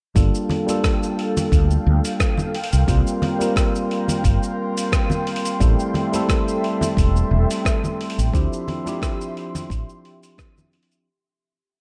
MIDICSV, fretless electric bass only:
0, 0, Header, 1, 2, 480
1, 0, Start_track
1, 0, Tempo, 681818
1, 111, Time_signature, 4, 2, 24, 8
1, 8310, End_track
2, 0, Start_track
2, 0, Title_t, "Fretless electric bass"
2, 0, Program_c, 0, 35
2, 114, Note_on_c, 0, 31, 92
2, 201, Note_off_c, 0, 31, 0
2, 1069, Note_on_c, 0, 38, 89
2, 1240, Note_off_c, 0, 38, 0
2, 1313, Note_on_c, 0, 38, 96
2, 1401, Note_off_c, 0, 38, 0
2, 1922, Note_on_c, 0, 36, 76
2, 1997, Note_off_c, 0, 36, 0
2, 2029, Note_on_c, 0, 36, 88
2, 2119, Note_off_c, 0, 36, 0
2, 2987, Note_on_c, 0, 31, 77
2, 3078, Note_off_c, 0, 31, 0
2, 3948, Note_on_c, 0, 33, 96
2, 4038, Note_off_c, 0, 33, 0
2, 4906, Note_on_c, 0, 28, 89
2, 5079, Note_off_c, 0, 28, 0
2, 5146, Note_on_c, 0, 28, 101
2, 5237, Note_off_c, 0, 28, 0
2, 5761, Note_on_c, 0, 33, 81
2, 5836, Note_off_c, 0, 33, 0
2, 5869, Note_on_c, 0, 38, 96
2, 5959, Note_off_c, 0, 38, 0
2, 6829, Note_on_c, 0, 33, 78
2, 6919, Note_off_c, 0, 33, 0
2, 8310, End_track
0, 0, End_of_file